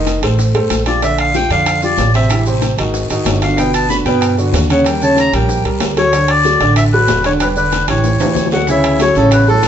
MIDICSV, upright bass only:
0, 0, Header, 1, 2, 480
1, 0, Start_track
1, 0, Key_signature, 2, "major"
1, 0, Tempo, 318810
1, 1543, Time_signature, 4, 2, 24, 8
1, 14573, End_track
2, 0, Start_track
2, 0, Title_t, "Upright bass"
2, 0, Program_c, 0, 32
2, 0, Note_on_c, 0, 29, 82
2, 254, Note_off_c, 0, 29, 0
2, 326, Note_on_c, 0, 33, 86
2, 781, Note_off_c, 0, 33, 0
2, 808, Note_on_c, 0, 31, 66
2, 1038, Note_off_c, 0, 31, 0
2, 1051, Note_on_c, 0, 34, 86
2, 2174, Note_off_c, 0, 34, 0
2, 2250, Note_on_c, 0, 41, 85
2, 2927, Note_off_c, 0, 41, 0
2, 2970, Note_on_c, 0, 33, 89
2, 4094, Note_off_c, 0, 33, 0
2, 4176, Note_on_c, 0, 32, 89
2, 4627, Note_off_c, 0, 32, 0
2, 4654, Note_on_c, 0, 32, 63
2, 4883, Note_off_c, 0, 32, 0
2, 4897, Note_on_c, 0, 31, 88
2, 6018, Note_off_c, 0, 31, 0
2, 6099, Note_on_c, 0, 43, 81
2, 6773, Note_off_c, 0, 43, 0
2, 6815, Note_on_c, 0, 39, 86
2, 7937, Note_off_c, 0, 39, 0
2, 8017, Note_on_c, 0, 34, 87
2, 8468, Note_off_c, 0, 34, 0
2, 8494, Note_on_c, 0, 36, 69
2, 8723, Note_off_c, 0, 36, 0
2, 8738, Note_on_c, 0, 38, 86
2, 9858, Note_off_c, 0, 38, 0
2, 9932, Note_on_c, 0, 33, 91
2, 10608, Note_off_c, 0, 33, 0
2, 10649, Note_on_c, 0, 28, 94
2, 11772, Note_off_c, 0, 28, 0
2, 11860, Note_on_c, 0, 33, 80
2, 12308, Note_off_c, 0, 33, 0
2, 12342, Note_on_c, 0, 37, 67
2, 12566, Note_off_c, 0, 37, 0
2, 12573, Note_on_c, 0, 38, 88
2, 13692, Note_off_c, 0, 38, 0
2, 13779, Note_on_c, 0, 33, 93
2, 14448, Note_off_c, 0, 33, 0
2, 14497, Note_on_c, 0, 36, 97
2, 14573, Note_off_c, 0, 36, 0
2, 14573, End_track
0, 0, End_of_file